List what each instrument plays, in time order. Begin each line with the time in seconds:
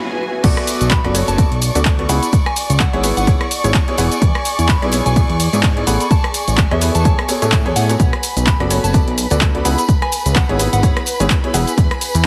Already playing: violin section G#4 G#5
0.44 analog synth bass B1, upright piano B3 F#4 A4 D5, violin section D5 C#6, kick, closed hi-hat, crash, tambourine, shaker
0.57 cross-stick, closed hi-hat
0.67 open hi-hat, tambourine, shaker
0.81 analog synth bass B1, closed hi-hat, tambourine, shaker
0.90 synth bell B5, kick, clap, closed hi-hat, tambourine, shaker
1.04 analog synth bass F#1, upright piano B3 F#4 A4 D5, cross-stick, closed hi-hat
1.14 upright piano B3 F#4 A4 C#5, open hi-hat, tambourine, shaker
1.27 analog synth bass F#1, synth bell A5, closed hi-hat, tambourine, shaker
1.38 upright piano B3 F#4 A4 D5, kick, closed hi-hat, tambourine, shaker
1.51 analog synth bass B1, closed hi-hat
1.61 open hi-hat, tambourine, shaker
1.75 analog synth bass D2, upright piano B3 F#4 A4 D5, closed hi-hat, tambourine, shaker
1.85 kick, clap, closed hi-hat, shaker
1.99 upright piano B3 F#4 A4 D5, closed hi-hat
2.09 analog synth bass C#2, upright piano B3 E4 G#4 F#5, synth bell B5, open hi-hat, tambourine, shaker
2.23 synth bell B5, closed hi-hat, tambourine, shaker
2.32 kick, closed hi-hat, tambourine, shaker
2.46 synth bell G#5, cross-stick, closed hi-hat
2.56 open hi-hat, tambourine, shaker
2.70 analog synth bass C#2, closed hi-hat, tambourine, shaker
2.75 ambient pad G#5
2.80 synth bell F#5, kick, clap, closed hi-hat, shaker
2.93 analog synth bass G#1, upright piano B3 E4 G#4 C#5, closed hi-hat
3.03 upright piano B3 E4 G#4 B4, open hi-hat, tambourine, shaker
3.17 analog synth bass G#1, synth bell F#5, closed hi-hat, tambourine, shaker
3.27 upright piano B3 E4 G#4 C#5, kick, closed hi-hat, tambourine, shaker
3.41 cross-stick, closed hi-hat
3.51 open hi-hat, tambourine, shaker
3.64 analog synth bass G#1, upright piano B3 E4 G#4 C#5, closed hi-hat, tambourine, shaker
3.74 kick, clap, closed hi-hat, shaker
3.88 upright piano B3 E4 G#4 C#5, closed hi-hat
3.98 analog synth bass E1, upright piano B3 E4 G#4 F#5, open hi-hat, tambourine, shaker
4.11 closed hi-hat, tambourine, shaker
4.21 analog synth bass E2, kick, closed hi-hat, tambourine, shaker
4.35 cross-stick, closed hi-hat
4.45 open hi-hat, tambourine, shaker
4.59 analog synth bass E2, closed hi-hat, tambourine, shaker
4.69 synth bell B5, kick, clap, closed hi-hat, shaker
4.82 analog synth bass B1, upright piano B3 E4 G#4 D5, cross-stick, closed hi-hat
4.92 upright piano B3 E4 G#4 C#5, open hi-hat, tambourine, shaker
5.06 analog synth bass B1, synth bell G#5, closed hi-hat, tambourine, shaker
5.16 upright piano B3 E4 G#4 D5, kick, closed hi-hat, tambourine, shaker
5.29 analog synth bass E2, closed hi-hat
5.40 open hi-hat, tambourine, shaker
5.53 analog synth bass G#2, upright piano B3 E4 G#4 D5, closed hi-hat, tambourine, shaker
5.63 kick, clap, closed hi-hat, shaker
5.77 upright piano B3 E4 G#4 D5, closed hi-hat
5.87 analog synth bass A1, upright piano B3 G#4 A4 F#5, synth bell B5, open hi-hat, tambourine, shaker
6.00 synth bell B5, closed hi-hat, tambourine, shaker
6.11 synth bell A5, kick, closed hi-hat, tambourine, shaker
6.24 cross-stick, closed hi-hat
6.34 open hi-hat, tambourine, shaker
6.48 analog synth bass A1, closed hi-hat, tambourine, shaker
6.57 kick, clap, closed hi-hat, shaker
6.71 analog synth bass E2, upright piano B3 G#4 A4 C#5, synth bell E5, cross-stick, closed hi-hat
6.81 upright piano B3 G#4 A4 B4, open hi-hat, tambourine, shaker
6.95 analog synth bass E2, synth bell A5, closed hi-hat, tambourine, shaker
7.05 upright piano B3 G#4 A4 C#5, synth bell A5, kick, closed hi-hat, tambourine, shaker
7.19 cross-stick, closed hi-hat
7.28 upright piano B3 G#4 A4 C#5, open hi-hat, tambourine, shaker
7.42 analog synth bass A2, upright piano B3 G#4 A4 C#5, closed hi-hat, tambourine, shaker
7.52 kick, clap, closed hi-hat, tambourine, shaker
7.66 analog synth bass E2, upright piano B3 G#4 A4 C#5, closed hi-hat
7.76 analog synth bass A2, synth bell F#5, open hi-hat, tambourine, shaker
7.89 upright piano B3 F#4 A4 C#5, closed hi-hat, tambourine, shaker
8.00 analog synth bass B1, violin section B4 B5, kick, closed hi-hat, shaker
8.13 cross-stick, closed hi-hat
8.23 open hi-hat, tambourine, shaker
8.36 analog synth bass B1, closed hi-hat, tambourine, shaker
8.47 synth bell B5, kick, clap, closed hi-hat, shaker
8.60 analog synth bass F#1, upright piano B3 F#4 A4 D5, cross-stick, closed hi-hat
8.70 upright piano B3 F#4 A4 C#5, open hi-hat, tambourine, shaker
8.84 analog synth bass F#1, synth bell A5, closed hi-hat, tambourine, shaker
8.93 upright piano B3 F#4 A4 D5, kick, closed hi-hat, tambourine, shaker
9.07 analog synth bass B1, closed hi-hat
9.18 open hi-hat, tambourine, shaker
9.30 analog synth bass D2, upright piano B3 F#4 A4 D5, closed hi-hat, tambourine, shaker
9.41 kick, clap, closed hi-hat, tambourine, shaker
9.55 upright piano B3 F#4 A4 D5, closed hi-hat
9.65 analog synth bass C#2, upright piano B3 E4 G#4 F#5, synth bell B5, open hi-hat, tambourine, shaker
9.78 synth bell B5, closed hi-hat, tambourine, shaker
9.89 kick, closed hi-hat, shaker
10.02 synth bell G#5, cross-stick, closed hi-hat
10.12 open hi-hat, tambourine, shaker
10.26 analog synth bass C#2, closed hi-hat, tambourine, shaker
10.36 synth bell F#5, kick, clap, closed hi-hat, shaker
10.49 analog synth bass G#1, upright piano B3 E4 G#4 C#5, ambient pad G#5, closed hi-hat
10.59 upright piano B3 E4 G#4 B4, open hi-hat, tambourine, shaker
10.73 analog synth bass G#1, synth bell F#5, closed hi-hat, tambourine, shaker
10.83 upright piano B3 E4 G#4 C#5, kick, closed hi-hat, tambourine, shaker
10.97 cross-stick, closed hi-hat
11.06 open hi-hat, tambourine, shaker
11.19 analog synth bass G#1, upright piano B3 E4 G#4 C#5, closed hi-hat, tambourine, shaker
11.30 kick, clap, closed hi-hat, shaker
11.44 upright piano B3 E4 G#4 C#5, closed hi-hat
11.54 analog synth bass E1, upright piano B3 E4 G#4 F#5, open hi-hat, tambourine, shaker
11.67 closed hi-hat, tambourine, shaker
11.78 analog synth bass E2, kick, closed hi-hat, tambourine, shaker
11.91 cross-stick, closed hi-hat
12.01 open hi-hat, tambourine, shaker
12.14 analog synth bass E2, closed hi-hat, tambourine, shaker